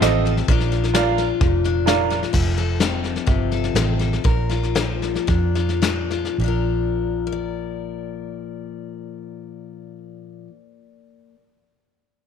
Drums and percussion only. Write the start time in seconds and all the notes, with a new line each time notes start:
0.02 snare, hi-hat pedal
0.25 snare
0.37 snare
0.48 kick, snare
0.60 snare
0.72 snare
0.83 snare
0.95 snare, hi-hat pedal
1.18 snare
1.41 kick, snare
1.64 snare
1.88 snare, hi-hat pedal
2.11 snare
2.23 snare
2.34 kick, snare, crash
2.58 snare
2.80 snare, hi-hat pedal
3.04 snare
3.16 snare
3.27 kick, snare
3.51 snare
3.64 snare
3.76 snare, hi-hat pedal
4.00 snare
4.13 snare
4.25 kick, snare
4.50 snare
4.63 snare
4.76 snare, hi-hat pedal
5.02 snare
5.15 snare
5.28 kick, snare
5.55 snare
5.69 snare
5.82 snare, hi-hat pedal
6.10 snare
6.25 snare